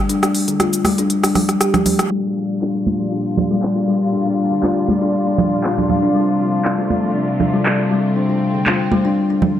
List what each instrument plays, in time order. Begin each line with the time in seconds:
0.09 kalimba D4, closed hi-hat, shaker
0.23 kalimba D4, cross-stick, closed hi-hat, shaker
0.35 open hi-hat, shaker
0.48 kalimba D3, closed hi-hat, shaker
0.60 kalimba F4, cross-stick, closed hi-hat, high conga, shaker
0.73 closed hi-hat, shaker
0.85 kalimba G3, cross-stick, open hi-hat, high conga, shaker
0.98 kalimba D4, closed hi-hat, shaker
1.10 closed hi-hat, shaker
1.24 kalimba D4, cross-stick, open hi-hat, shaker
1.35 kalimba G3, cross-stick, open hi-hat, high conga, low conga, shaker
1.49 cross-stick, closed hi-hat, shaker
1.61 kalimba G4, cross-stick, closed hi-hat, shaker
1.74 kalimba G3, cross-stick, closed hi-hat, low conga, shaker
1.86 open hi-hat, high conga, low conga, shaker
1.99 kalimba A3, cross-stick, closed hi-hat, shaker
2.11 string section A#2 G3 D4 F4, kalimba G3
2.37 kalimba F3
2.61 kalimba D4, clap
2.75 kalimba A#3
2.87 high conga
3.00 kalimba F3
3.12 kalimba D4
3.37 kalimba D4, low conga
3.50 kalimba G3
3.62 clap
3.76 kalimba A#3
3.88 kalimba G3
4.13 kalimba D4
4.26 kalimba D4
4.51 kalimba D3
4.63 kalimba F4, clap, high conga
4.88 kalimba G3, high conga
5.02 kalimba D4
5.27 kalimba D4
5.38 kalimba D3, high conga, low conga
5.64 kalimba F4, clap
5.78 kalimba D4, low conga
5.89 high conga, low conga
6.03 kalimba D4
6.14 string section C3 A3, kalimba G3
6.40 kalimba F3
6.65 kalimba D4, clap
6.78 kalimba A3
6.90 high conga
7.03 kalimba F3
7.15 kalimba D4
7.40 kalimba D4, low conga
7.54 kalimba G3
7.66 clap
7.79 kalimba A3
7.91 kalimba G3
8.16 string section C4, kalimba D4
8.30 kalimba D4
8.55 kalimba D3
8.66 kalimba F4, clap, high conga
8.92 kalimba G3, high conga
9.05 kalimba D4
9.30 kalimba D4
9.42 kalimba D3, high conga, low conga